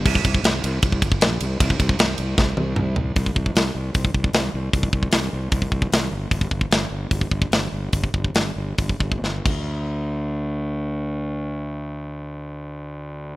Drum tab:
CC |x---------------|----------------|----------------|----------------|
RD |--x-x-x-x-x-x-x-|x-x-x-x---------|----------------|----------------|
HH |----------------|----------------|o---o---o---o---|o---o---o---o---|
SD |----o-------o---|----o---o-------|----o-------o---|----o-------o---|
T1 |----------------|----------o-----|----------------|----------------|
T2 |----------------|------------o---|----------------|----------------|
FT |----------------|--------------o-|----------------|----------------|
BD |oooo----oooo----|oooo----o-------|oooo----oooo----|oooo----oooo----|

CC |----------------|--------------x-|----------------|----------------|
RD |----------------|----------------|----------------|----------------|
HH |o---o---o---o---|o---o---o-------|----------------|----------------|
SD |----o-------o---|----o-------o---|----------------|----------------|
T1 |----------------|----------------|----------------|----------------|
T2 |----------------|----------------|----------------|----------------|
FT |----------------|----------------|----------------|----------------|
BD |oooo----oooo----|oooo----oooo--o-|----------------|----------------|